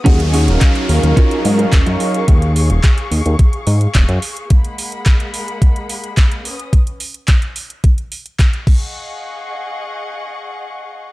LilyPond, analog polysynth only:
\new Staff \with { instrumentName = "Analog polysynth" } { \time 4/4 \key ees \minor \tempo 4 = 108 <ges des' ees' aes' f''>8. <ges des' ees' bes' f''>2.~ <ges des' ees' bes' f''>16 | r1 | r1 | r1 |
r1 | }